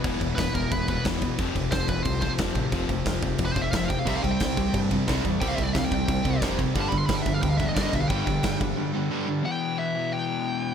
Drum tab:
CC |xxxxxxxx|xxxxxxxx|xxxxxxxx|xxxxxxxx|
SD |--o---o-|--o---o-|--o---o-|--o---o-|
BD |oooooooo|oooooooo|oooooooo|oooooooo|

CC |xxxxxxxx|xxxxxxxx|xxxx----|--------|
SD |--o---o-|--o---o-|--o-----|--------|
BD |oooooooo|oooooooo|oooo----|--------|